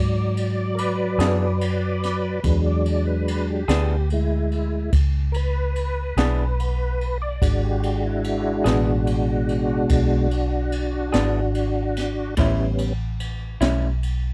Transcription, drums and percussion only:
0.37 ride medium
0.78 ride medium
1.20 snare medium
1.20 ride medium
1.61 ride medium
2.03 snare soft
2.03 ride medium
2.44 kick loud
2.44 ride medium
2.86 ride medium
3.28 ride medium
3.69 snare loud
3.69 ride medium
4.10 ride medium
4.51 ride soft
4.93 kick loud
4.93 ride medium
5.34 ride medium
5.76 ride soft
6.17 snare loud
6.17 ride medium
6.60 ride medium
7.01 ride soft
7.42 kick loud
7.42 ride medium
7.83 ride medium
8.24 ride medium
8.66 snare loud
8.66 ride medium
9.07 ride medium
9.49 ride medium
9.90 kick loud
9.90 ride medium
10.31 ride medium
10.72 ride medium
11.13 snare medium
11.13 ride medium
11.55 ride medium
11.97 snare soft
11.97 ride medium
12.37 kick loud
12.37 ride medium
12.78 ride medium
13.20 ride medium
13.61 snare loud
13.61 ride medium
14.03 ride medium

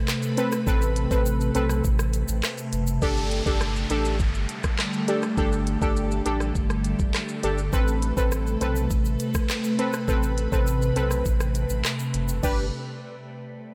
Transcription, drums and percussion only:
0.08 cross-stick medium
0.08 clap loud
0.08 shaker medium
0.22 shaker medium
0.37 closed hi-hat medium
0.37 shaker medium
0.52 cross-stick loud
0.52 shaker medium
0.67 kick loud
0.67 shaker medium
0.82 shaker medium
0.96 closed hi-hat medium
0.96 shaker medium
1.11 kick loud
1.11 shaker medium
1.26 shaker medium
1.41 shaker medium
1.41 shaker soft
1.55 closed hi-hat medium
1.55 shaker medium
1.55 shaker soft
1.69 cross-stick medium
1.69 shaker medium
1.84 kick medium
1.84 shaker medium
1.99 cross-stick medium
1.99 shaker medium
2.13 closed hi-hat medium
2.13 shaker medium
2.28 shaker medium
2.43 cross-stick loud
2.43 clap loud
2.43 shaker medium
2.58 shaker medium
2.73 closed hi-hat medium
2.73 shaker medium
2.87 shaker medium
3.02 kick loud
3.02 shaker medium
3.17 shaker medium
3.31 closed hi-hat medium
3.31 shaker medium
3.46 kick loud
3.46 shaker medium
3.61 cross-stick loud
3.61 shaker medium
3.76 shaker medium
3.90 closed hi-hat medium
3.90 shaker medium
4.05 shaker medium
4.20 kick medium
4.20 shaker medium
4.35 shaker medium
4.49 closed hi-hat medium
4.49 shaker medium
4.64 kick loud
4.64 cross-stick loud
4.64 shaker medium
4.79 cross-stick medium
4.79 clap medium
4.79 shaker medium
4.93 shaker medium
5.08 closed hi-hat medium
5.08 shaker medium
5.23 cross-stick medium
5.23 shaker medium
5.37 kick loud
5.37 shaker medium
5.52 shaker medium
5.67 closed hi-hat medium
5.67 shaker medium
5.82 kick loud
5.82 shaker medium
5.96 shaker medium
6.11 shaker medium
6.26 closed hi-hat medium
6.26 shaker medium
6.40 cross-stick medium
6.40 shaker medium
6.55 kick medium
6.55 shaker medium
6.70 cross-stick medium
6.70 shaker medium
6.84 closed hi-hat medium
6.84 shaker medium
6.99 kick loud
6.99 shaker medium
7.14 cross-stick medium
7.14 clap medium
7.14 shaker medium
7.28 shaker medium
7.43 closed hi-hat medium
7.43 shaker medium
7.58 shaker medium
7.73 kick loud
7.73 shaker medium
7.88 shaker medium
8.02 closed hi-hat medium
8.02 shaker medium
8.17 kick loud
8.17 shaker medium
8.32 cross-stick loud
8.32 shaker medium
8.47 shaker medium
8.47 shaker soft
8.61 closed hi-hat medium
8.61 shaker medium
8.61 shaker soft
8.76 shaker medium
8.90 kick medium
8.90 shaker medium
9.05 shaker medium
9.19 closed hi-hat medium
9.19 shaker medium
9.34 kick loud
9.34 cross-stick loud
9.34 shaker medium
9.49 cross-stick medium
9.49 clap loud
9.49 shaker medium
9.64 shaker medium
9.79 closed hi-hat medium
9.79 shaker medium
9.93 cross-stick medium
9.93 shaker medium
10.08 kick loud
10.08 shaker medium
10.23 shaker medium
10.38 closed hi-hat medium
10.38 shaker medium
10.52 kick loud
10.52 shaker medium
10.67 shaker medium
10.82 shaker medium
10.82 shaker soft
10.96 closed hi-hat medium
10.96 shaker medium
10.96 shaker soft
11.11 cross-stick medium
11.11 shaker medium
11.25 kick medium
11.25 shaker medium
11.40 cross-stick medium
11.40 shaker medium
11.55 closed hi-hat medium
11.55 shaker medium
11.69 shaker medium
11.85 cross-stick medium
11.85 clap medium
11.85 shaker medium
11.99 shaker medium
12.14 closed hi-hat medium
12.14 shaker medium
12.28 shaker medium
12.43 kick loud
12.43 crash medium
12.43 shaker medium

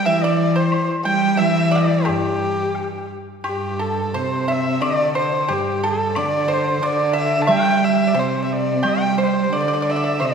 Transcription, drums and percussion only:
0.72 high woodblock medium
2.06 high woodblock medium
2.75 low woodblock soft
3.44 high woodblock medium
4.82 high woodblock medium
6.15 high woodblock medium
7.47 high woodblock medium
8.15 low woodblock soft
8.84 high woodblock medium
10.21 high woodblock soft

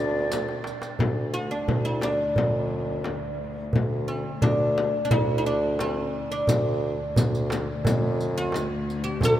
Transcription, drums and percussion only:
0.32 riq medium
0.32 darbuka tek medium
0.32 frame drum medium
0.49 darbuka ka medium
0.64 riq soft
0.64 darbuka tek medium
0.82 riq soft
0.82 darbuka ka medium
0.99 darbuka dum medium
0.99 frame drum medium
1.34 darbuka ka soft
1.68 darbuka dum medium
1.68 frame drum medium
2.01 darbuka tek medium
2.01 frame drum medium
2.19 darbuka ka soft
2.36 darbuka dum medium
2.36 frame drum medium
3.04 darbuka tek medium
3.04 frame drum medium
3.73 darbuka dum medium
3.73 frame drum medium
4.09 darbuka ka soft
4.42 darbuka dum medium
4.42 frame drum medium
4.78 frame drum medium
4.94 darbuka ka soft
5.11 darbuka dum medium
5.11 frame drum medium
5.79 darbuka tek medium
5.79 frame drum medium
6.31 darbuka ka soft
6.47 riq medium
6.47 darbuka dum medium
6.47 frame drum medium
6.83 darbuka ka soft
7.16 riq medium
7.16 darbuka dum medium
7.16 frame drum medium
7.35 riq soft
7.50 riq soft
7.50 darbuka tek medium
7.50 frame drum medium
7.68 darbuka ka soft
7.85 riq medium
7.85 darbuka dum medium
7.85 frame drum medium
8.20 riq soft
8.52 riq soft
8.52 darbuka tek medium
8.52 frame drum medium
8.90 riq soft
9.04 darbuka ka soft
9.21 riq medium
9.21 darbuka dum medium
9.21 frame drum medium

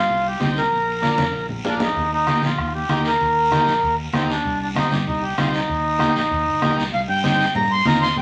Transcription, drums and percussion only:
0.10 long guiro medium
0.41 high conga medium
0.41 short guiro medium
0.56 short guiro medium
0.72 long guiro medium
1.03 high conga medium
1.03 short guiro medium
1.18 high conga medium
1.18 short guiro medium
1.34 long guiro medium
1.49 low conga medium
1.65 low conga medium
1.65 short guiro medium
1.80 low conga medium
1.80 short guiro medium
1.96 bombo low medium
1.96 long guiro medium
2.27 bombo rim medium
2.27 high conga medium
2.27 short guiro medium
2.42 high conga medium
2.42 short guiro medium
2.58 bombo low medium
2.58 bombo rim medium
2.58 long guiro medium
2.89 bombo rim medium
2.89 high conga medium
2.89 short guiro medium
3.05 short guiro medium
3.21 bombo low medium
3.21 long guiro medium
3.51 bombo rim medium
3.51 high conga medium
3.51 short guiro medium
3.67 short guiro medium
3.82 bombo low medium
3.82 long guiro medium
4.13 bombo rim medium
4.13 high conga medium
4.13 short guiro medium
4.30 short guiro medium
4.45 bombo low medium
4.45 long guiro medium
4.75 bombo rim medium
4.75 high conga medium
4.75 short guiro medium
4.91 high conga medium
4.91 short guiro medium
5.07 bombo low medium
5.07 long guiro medium
5.38 bombo rim medium
5.38 high conga medium
5.38 short guiro medium
5.54 short guiro medium
5.69 bombo low medium
5.69 long guiro medium
6.00 bombo rim medium
6.00 high conga medium
6.00 short guiro medium
6.16 short guiro medium
6.31 bombo low medium
6.31 long guiro medium
6.62 bombo rim medium
6.62 high conga medium
6.62 short guiro medium
6.79 short guiro medium
6.94 high conga soft
6.94 long guiro medium
7.24 high conga medium
7.24 short guiro medium
7.41 short guiro medium
7.55 high conga soft
7.55 low conga medium
7.55 long guiro medium
7.85 high conga medium
7.85 short guiro medium
8.03 short guiro medium
8.16 high conga soft
8.16 low conga medium
8.16 long guiro medium

